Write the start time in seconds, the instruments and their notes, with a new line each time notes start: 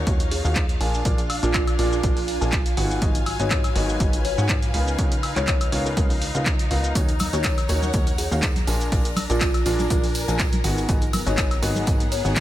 Already playing: string section D#4 C#5, string machine F4 F5
0.07 analog synth bass D#2, grand piano D#3 A#3 C#4 D#4 F#4 C#5, kick, closed hi-hat, shaker
0.20 closed hi-hat, shaker
0.31 kalimba G#4, open hi-hat
0.45 analog synth bass D#2, grand piano D#3 A#3 C#4 D#4 F#4 F5, shaker
0.56 kick, clap, closed hi-hat, shaker
0.69 closed hi-hat, shaker
0.80 analog synth bass A#1, grand piano A#2 A#3 D4 F4 G#4 G#5, string section D4, open hi-hat
0.94 shaker
1.05 analog synth bass A#1, grand piano A#2 A#3 D4 F4 G#4 D5, kick, closed hi-hat, shaker
1.18 closed hi-hat, shaker
1.30 open hi-hat, high woodblock
1.43 analog synth bass A#1, grand piano A#2 A#3 D4 F4 G#4 D5, kalimba F4, string section G#5, closed hi-hat, shaker
1.54 string section A#4, kick, clap, closed hi-hat, high woodblock, shaker
1.67 closed hi-hat, high woodblock, shaker
1.79 analog synth bass A#1, grand piano A#2 A#3 D4 F4 G#4 D5, kalimba F4, open hi-hat
1.92 kalimba F4, shaker
2.03 analog synth bass A#1, grand piano A#2 A#3 D4 F4 G#4 D5, kick, closed hi-hat, shaker
2.17 open hi-hat, shaker
2.28 open hi-hat
2.41 analog synth bass A#1, grand piano A#2 A#3 D4 F4 G#4 G#5, shaker
2.52 kick, clap, closed hi-hat, shaker
2.66 closed hi-hat, shaker
2.77 analog synth bass G#1, grand piano G#2 B3 D#4 F#4 G#4 F#5, string section F#3, open hi-hat
2.91 shaker
3.02 analog synth bass G#1, grand piano G#2 B3 D#4 F#4 G#4 D#5, kick, closed hi-hat, shaker
3.15 closed hi-hat, shaker
3.26 open hi-hat, high woodblock
3.40 analog synth bass G#1, grand piano G#2 B3 D#4 F#4 G#4 D#5, string section B4, kalimba C#5, closed hi-hat, shaker
3.51 kick, clap, closed hi-hat, high woodblock, shaker
3.64 closed hi-hat, high woodblock, shaker
3.76 analog synth bass G#1, grand piano G#2 B3 D#4 F#4 G#4 D#5, kalimba A#4, open hi-hat
3.89 shaker
4.00 analog synth bass G#1, grand piano G#2 B3 D#4 F#4 G#4 D#5, kick, closed hi-hat, shaker
4.13 closed hi-hat, shaker
4.25 kalimba C#5, open hi-hat
4.38 grand piano G#2 B3 D#4 F#4 G#4 F#5, analog synth bass G#2, shaker
4.49 kick, clap, closed hi-hat, shaker
4.63 closed hi-hat, shaker
4.74 analog synth bass C#2, grand piano C#3 B3 D#4 F4 A#4 F5, string section D#4, open hi-hat
4.88 shaker
4.99 analog synth bass C#2, grand piano C#3 B3 D#4 F4 A#4 C#5, kick, closed hi-hat, shaker
5.12 closed hi-hat, shaker
5.23 open hi-hat, high woodblock
5.36 analog synth bass C#2, grand piano C#3 B3 D#4 F4 A#4 C#5, kalimba C#5, clap, closed hi-hat, shaker
5.48 kalimba C#5, kick, clap, closed hi-hat, high woodblock, shaker
5.61 closed hi-hat, high woodblock, shaker
5.72 analog synth bass C#2, grand piano C#3 B3 D#4 F4 A#4 C#5, string section F5, open hi-hat
5.86 kalimba A#4, shaker
5.97 analog synth bass C#2, grand piano C#3 B3 D#4 F4 A#4, kalimba A#4, kick, closed hi-hat, shaker
6.10 open hi-hat, shaker
6.22 open hi-hat
6.35 analog synth bass C#2, grand piano C#3 B3 D#4 F4 A#4 F5, closed hi-hat, shaker
6.46 kick, clap, closed hi-hat, shaker
6.59 closed hi-hat, shaker
6.71 analog synth bass C#2, grand piano B3 D#4 F4 A#4 F5, open hi-hat
6.84 closed hi-hat, shaker
6.95 analog synth bass D#2, grand piano D#3 A#3 C#4 D#4 F#4 C#5, string machine A#4 A#5, kick, closed hi-hat, tambourine, shaker
7.09 closed hi-hat, tambourine, shaker
7.17 string section C#5, open hi-hat, tambourine, high conga, high woodblock, shaker
7.33 analog synth bass D#2, grand piano D#3 A#3 C#4 D#4 F#4 C#5, kalimba C#5, snare, closed hi-hat, tambourine, shaker
7.44 kick, snare, clap, closed hi-hat, tambourine, high woodblock, shaker
7.45 shaker
7.58 snare, closed hi-hat, tambourine, high woodblock, shaker
7.69 analog synth bass D#2, grand piano D#3 A#3 C#4 D#4 F#4 C#5, kalimba A#4, open hi-hat, tambourine, shaker
7.73 string section F#5
7.82 tambourine, high conga, shaker
7.93 analog synth bass D#2, grand piano D#3 A#3 C#4 D#4 F#4 C#5, kick, closed hi-hat, tambourine, shaker
8.07 closed hi-hat, tambourine, shaker
8.18 kalimba G#4, open hi-hat, tambourine, shaker
8.31 analog synth bass D#2, grand piano D#3 A#3 C#4 D#4 F#4 F5, tambourine, shaker
8.43 kick, snare, clap, closed hi-hat, shaker
8.56 snare, closed hi-hat, tambourine, high conga, shaker
8.67 analog synth bass A#1, grand piano A#2 A#3 D4 F4 G#4 G#5, string section D4, open hi-hat, tambourine, shaker
8.80 tambourine, shaker
8.92 analog synth bass A#1, grand piano A#2 A#3 D4 F4 G#4 D5, kick, closed hi-hat, open hi-hat, tambourine, shaker
8.97 string section A#4
9.05 closed hi-hat, tambourine, shaker
9.16 open hi-hat, tambourine, high conga, high woodblock, shaker
9.30 analog synth bass A#1, grand piano A#2 A#3 D4 F4 G#4 D5, kalimba F4, closed hi-hat, tambourine, shaker
9.41 kalimba F4, kick, snare, clap, closed hi-hat, tambourine, high woodblock, shaker
9.54 string section G#5, snare, closed hi-hat, tambourine, high woodblock, shaker
9.66 analog synth bass A#1, grand piano A#2 A#3 D4 F4 G#4 D5, kalimba F4, open hi-hat, tambourine, shaker
9.79 kalimba F4, tambourine, high conga, shaker
9.90 analog synth bass A#1, grand piano A#2 A#3 D4 F4 G#4 D5, kick, closed hi-hat, tambourine, shaker
10.04 open hi-hat, tambourine, shaker
10.15 open hi-hat, tambourine, shaker
10.28 analog synth bass A#1, grand piano A#2 A#3 D4 F4 G#4 G#5, closed hi-hat, tambourine, shaker
10.39 kick, snare, clap, closed hi-hat, tambourine, shaker
10.53 closed hi-hat, tambourine, high conga, shaker
10.64 analog synth bass G#1, grand piano G#2 B3 D#4 F#4 G#4 F#5, string section B3, open hi-hat, tambourine, shaker
10.78 tambourine, shaker
10.89 analog synth bass G#1, grand piano G#2 B3 D#4 F#4 G#4 D#5, kick, closed hi-hat, tambourine, shaker
11.01 closed hi-hat, tambourine, shaker
11.12 string section G#4, open hi-hat, tambourine, high conga, high woodblock, shaker
11.26 analog synth bass G#1, grand piano G#2 B3 D#4 F#4 G#4 D#5, kalimba C#5, snare, closed hi-hat, tambourine, shaker
11.38 kick, snare, clap, closed hi-hat, high woodblock, shaker
11.51 string section F#5, snare, closed hi-hat, tambourine, high woodblock, shaker
11.62 analog synth bass G#1, grand piano G#2 B3 D#4 F#4 G#4 D#5, kalimba A#4, open hi-hat, tambourine, shaker
11.75 tambourine, high conga, shaker
11.87 analog synth bass G#1, grand piano G#2 B3 F#4 G#4 D#5, kick, closed hi-hat, tambourine, shaker
12.00 closed hi-hat, tambourine, shaker
12.12 kalimba C#5, open hi-hat, tambourine, shaker
12.25 analog synth bass G#1, grand piano G#2 B3 D#4 F#4 G#4 F#5, tambourine, shaker
12.36 kick, snare, clap, closed hi-hat, tambourine, shaker